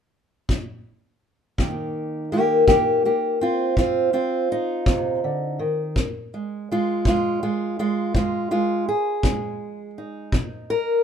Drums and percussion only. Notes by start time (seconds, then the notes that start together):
0.49 kick
1.58 kick
2.68 kick
3.77 kick
4.86 kick
5.96 kick
7.05 kick
8.15 kick
9.23 kick
10.32 kick